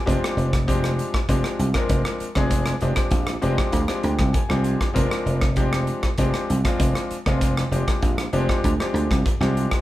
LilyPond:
<<
  \new Staff \with { instrumentName = "Grand piano" } { \time 4/4 \key f \dorian \tempo 4 = 98 << { r1 | r4 \tuplet 3/2 { r8. d''16 ees''8 } f''8 g''8 aes''8 aes''8 | r1 | r1 | } \\ { <f aes c' d' g'>8. r16 <f aes c' d' g'>8. r16 <f aes c' d' g'>8 r16 <f aes c' d' bes'>8. r16 <f aes c' d' aes'>16~ | <f aes c' d' aes'>16 r16 <f aes c' d' g'>8. r16 <f aes c' d' g'>8 r16 <f aes c' d' g'>8. r16 <f aes c' d' g'>8 r16 | <f aes c' d' bes'>8. r16 <f aes c' d' g'>8. r16 <f aes c' d' g'>8 r16 <f aes c' d' f'>8. r16 <f aes c' d' f'>16~ | <f aes c' d' f'>16 r16 <f aes c' d' g'>8. r16 <f aes c' d' g'>8 r16 <f aes c' d' g'>8. r16 <f aes c' d' g'>8 r16 | } >> }
  \new Staff \with { instrumentName = "Slap bass" } { \clef bass \time 4/4 \key f \dorian f,,16 r16 f,,4~ f,,16 r16 f,,16 r16 c,16 r16 f,,16 r8 f,,16~ | f,,8 f,,16 r16 bes,,8 f,,16 r16 d,16 r16 d,16 c,16 r16 c,8 r16 | f,,16 r16 f,,4~ f,,16 r16 f,,16 r16 c,16 r16 f,,16 r8 f,,16~ | f,,8 f,,16 r16 bes,,8 f,,16 r16 d,16 r16 d,16 c,16 r16 c,8 r16 | }
  \new DrumStaff \with { instrumentName = "Drums" } \drummode { \time 4/4 <hh bd>16 <hh ss>16 hh16 <hh bd ss>16 <hh bd>16 <hh ss>16 hh16 <bd ss>16 <hh bd>16 <hh ss>16 hh16 <hh bd ss>16 <hh bd>16 <hh ss>16 hh16 <bd ss>16 | <hh bd>16 <hh ss>16 hh16 <hh bd ss>16 <hh bd>16 <hh ss>16 hh16 <bd ss>16 <hh bd>16 <hh ss>16 hh16 <hh bd ss>16 <hh bd>16 ss16 hh16 <hh bd ss>16 | <hh bd>16 <hh ss>16 hh16 <hh bd ss>16 <hh bd>16 <hh ss>16 hh16 <bd ss>16 <hh bd>16 <hh ss>16 hh16 <hh bd ss>16 <hh bd>16 <hh ss>16 hh16 <bd ss>16 | <hh bd>16 <hh ss>16 hh16 <hh bd ss>16 <hh bd>16 <hh ss>16 hh16 <bd ss>16 <hh bd>16 <hh ss>16 hh16 <hh bd ss>16 <hh bd>16 ss16 hh16 <hh bd ss>16 | }
>>